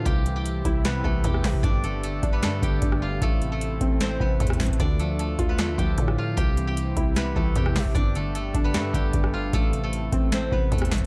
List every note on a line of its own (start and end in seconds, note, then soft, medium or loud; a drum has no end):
0.00 1.05 A3 medium
0.00 0.86 B3 medium
0.00 1.29 D4 medium
0.00 2.39 F4 medium
0.00 1.04 A4 medium
0.00 0.85 B4 medium
0.00 0.33 D5 loud
0.00 1.54 F5 medium
0.05 0.63 C2 loud
0.05 1.62 C3 medium
0.05 0.84 C3 medium
0.05 1.62 C4 medium
0.05 1.62 E4 medium
0.05 0.35 G4 loud
0.05 3.19 G4 medium
0.05 0.36 G5 medium
0.05 kick loud
0.05 closed hi-hat medium
0.26 1.03 E3 medium
0.26 closed hi-hat medium
0.36 1.24 G4 medium
0.36 1.25 G5 medium
0.46 closed hi-hat medium
0.65 1.03 C2 loud
0.65 1.64 E4 loud
0.65 kick loud
0.65 closed hi-hat medium
0.85 1.23 C3 medium
0.85 2.33 B3 medium
0.85 2.32 B4 medium
0.85 cross-stick medium
0.85 snare loud
0.85 closed hi-hat medium
1.04 1.24 C2 loud
1.04 1.64 E3 medium
1.04 1.84 A3 medium
1.04 1.84 A4 medium
1.04 kick medium
1.24 1.43 E2 loud
1.24 1.43 C3 medium
1.24 2.62 G4 medium
1.24 2.63 G5 medium
1.24 kick loud
1.24 closed hi-hat medium
1.34 cross-stick medium
1.44 1.64 C3 medium
1.44 1.63 C3 loud
1.44 kick loud
1.44 snare loud
1.44 open hi-hat medium
1.54 kick medium
1.63 2.21 G1 loud
1.63 2.41 G2 loud
1.63 3.20 G3 medium
1.63 4.44 D4 medium
1.63 3.20 A4 medium
1.63 3.48 D5 loud
1.63 3.20 D5 medium
1.63 kick loud
1.63 closed hi-hat medium
1.84 2.62 D3 medium
1.84 2.04 A3 medium
1.84 2.03 A4 medium
1.84 closed hi-hat medium
2.03 2.44 A3 medium
2.03 2.43 A4 medium
2.03 closed hi-hat medium
2.23 2.44 G1 loud
2.23 3.22 D4 loud
2.23 kick loud
2.23 closed hi-hat medium
2.33 4.07 B3 medium
2.33 4.07 B4 medium
2.43 2.81 G2 medium
2.43 2.62 G2 loud
2.43 3.23 A3 medium
2.43 3.22 A4 medium
2.43 cross-stick medium
2.43 snare loud
2.43 closed hi-hat medium
2.62 2.81 G1 loud
2.62 3.22 D3 medium
2.62 4.98 G4 medium
2.62 4.19 G5 medium
2.62 kick medium
2.62 closed hi-hat medium
2.82 3.20 G1 loud
2.82 3.00 G2 medium
2.82 kick loud
2.82 closed hi-hat medium
2.92 cross-stick medium
3.02 3.22 G2 medium
3.02 5.54 F4 medium
3.02 4.69 F5 medium
3.22 3.79 A1 loud
3.22 3.99 A2 medium
3.22 3.52 A3 medium
3.22 4.78 C4 medium
3.22 4.78 E4 medium
3.22 4.78 A4 medium
3.22 3.51 A4 loud
3.22 kick loud
3.22 closed hi-hat medium
3.41 4.19 C3 medium
3.41 closed hi-hat medium
3.52 4.40 A3 medium
3.52 4.40 A4 medium
3.61 closed hi-hat medium
3.81 4.19 A1 loud
3.81 4.80 C4 loud
3.81 kick loud
3.81 closed hi-hat medium
4.00 4.39 A2 medium
4.00 4.27 C4 medium
4.00 4.27 C5 medium
4.00 snare loud
4.00 closed hi-hat medium
4.20 4.39 A1 loud
4.20 4.80 C3 medium
4.20 5.49 B3 medium
4.20 5.49 B4 medium
4.20 kick medium
4.40 4.59 E2 loud
4.40 4.59 A2 medium
4.40 5.00 A3 medium
4.40 4.99 A4 medium
4.40 kick loud
4.40 closed hi-hat medium
4.47 cross-stick loud
4.47 closed hi-hat medium
4.53 closed hi-hat medium
4.60 4.79 A1 loud
4.60 4.80 A2 medium
4.60 kick loud
4.60 snare loud
4.60 closed hi-hat medium
4.60 open hi-hat medium
4.66 kick medium
4.66 closed hi-hat medium
4.73 closed hi-hat medium
4.80 5.36 D2 loud
4.80 6.36 D3 medium
4.80 5.57 D3 medium
4.80 6.36 D4 medium
4.80 7.61 D4 medium
4.80 6.36 F4 medium
4.80 6.36 A4 medium
4.80 6.65 D5 loud
4.80 kick loud
4.80 closed hi-hat medium
4.99 5.77 F3 medium
4.99 5.20 A3 medium
4.99 5.19 A4 medium
4.99 closed hi-hat medium
5.19 5.59 A3 medium
5.19 5.58 A4 medium
5.19 closed hi-hat medium
5.39 5.60 D2 loud
5.39 6.38 F4 loud
5.39 kick loud
5.39 closed hi-hat medium
5.49 7.17 B3 medium
5.49 7.17 B4 medium
5.58 5.70 E2 loud
5.58 5.97 D3 medium
5.58 7.36 A3 medium
5.58 7.35 A4 medium
5.58 cross-stick medium
5.58 snare loud
5.58 closed hi-hat medium
5.68 5.78 D2 loud
5.78 5.97 D2 loud
5.78 6.38 F3 medium
5.78 6.36 G4 medium
5.78 6.37 G5 medium
5.78 kick medium
5.78 closed hi-hat medium
5.98 6.36 A2 loud
5.98 6.17 D3 medium
5.98 kick loud
5.98 closed hi-hat medium
6.08 cross-stick medium
6.18 6.38 D3 medium
6.18 8.71 F4 medium
6.18 7.86 F5 medium
6.37 6.94 C2 loud
6.37 7.94 C3 medium
6.37 7.15 C3 loud
6.37 7.94 C4 medium
6.37 7.94 E4 medium
6.37 6.67 G4 loud
6.37 9.50 G4 medium
6.37 6.68 G5 medium
6.37 kick loud
6.37 closed hi-hat medium
6.57 7.35 E3 medium
6.57 closed hi-hat medium
6.67 7.56 G4 medium
6.67 7.57 G5 medium
6.77 closed hi-hat medium
6.97 7.35 C2 loud
6.97 7.95 E4 loud
6.97 kick loud
6.97 closed hi-hat medium
7.16 7.55 C3 medium
7.16 8.65 B3 medium
7.16 8.64 B4 medium
7.16 cross-stick medium
7.16 snare loud
7.16 closed hi-hat medium
7.36 7.55 C2 loud
7.36 7.95 E3 medium
7.36 8.16 A3 medium
7.36 8.15 A4 medium
7.36 kick loud
7.55 7.75 E2 loud
7.55 7.74 C3 medium
7.55 8.94 G4 medium
7.55 8.94 G5 medium
7.55 kick loud
7.55 closed hi-hat medium
7.66 cross-stick loud
7.76 7.95 C3 medium
7.76 7.95 C3 loud
7.76 kick loud
7.76 snare loud
7.76 open hi-hat medium
7.86 kick medium
7.95 8.52 G1 loud
7.95 8.73 G2 loud
7.95 9.52 G3 medium
7.95 10.75 D4 medium
7.95 9.52 A4 medium
7.95 9.79 D5 loud
7.95 9.52 D5 medium
7.95 kick loud
7.95 closed hi-hat medium
8.15 8.93 D3 medium
8.15 8.35 A3 medium
8.15 8.35 A4 medium
8.15 closed hi-hat medium
8.35 8.75 A3 medium
8.35 8.75 A4 medium
8.35 closed hi-hat medium
8.54 8.76 G1 loud
8.54 9.53 D4 loud
8.54 kick loud
8.54 closed hi-hat medium
8.64 10.39 B3 medium
8.64 10.39 B4 medium
8.74 9.13 G2 medium
8.74 8.93 G2 loud
8.74 9.54 A3 medium
8.74 9.53 A4 medium
8.74 cross-stick medium
8.74 snare loud
8.74 closed hi-hat medium
8.94 9.13 G1 loud
8.94 9.53 D3 medium
8.94 11.06 G4 medium
8.94 10.50 G5 medium
8.94 kick medium
8.94 closed hi-hat medium
9.13 9.52 G1 loud
9.13 9.32 G2 medium
9.13 kick loud
9.13 closed hi-hat medium
9.24 cross-stick medium
9.33 9.53 G2 medium
9.33 11.06 F4 medium
9.33 11.01 F5 medium
9.53 10.10 A1 loud
9.53 10.31 A2 medium
9.53 9.84 A3 medium
9.53 11.06 C4 medium
9.53 11.06 E4 medium
9.53 11.06 A4 medium
9.53 9.83 A4 loud
9.53 kick loud
9.53 closed hi-hat medium
9.73 10.50 C3 medium
9.73 closed hi-hat medium
9.83 10.72 A3 medium
9.83 10.71 A4 medium
9.93 closed hi-hat medium
10.12 10.50 A1 loud
10.12 11.06 C4 loud
10.12 kick loud
10.12 closed hi-hat medium
10.32 10.70 A2 medium
10.32 10.58 C4 medium
10.32 10.58 C5 medium
10.32 snare loud
10.32 closed hi-hat medium
10.52 10.71 A1 loud
10.52 11.06 C3 medium
10.52 11.06 B3 medium
10.52 11.06 B4 medium
10.52 kick medium
10.71 10.91 E2 loud
10.71 10.90 A2 medium
10.71 11.06 A3 medium
10.71 11.06 A4 medium
10.71 kick loud
10.71 closed hi-hat medium
10.78 cross-stick loud
10.78 closed hi-hat medium
10.85 closed hi-hat medium
10.91 11.06 A1 loud
10.91 11.06 A2 medium
10.91 kick loud
10.91 snare loud
10.91 closed hi-hat medium
10.91 open hi-hat medium
10.98 kick loud
10.98 closed hi-hat medium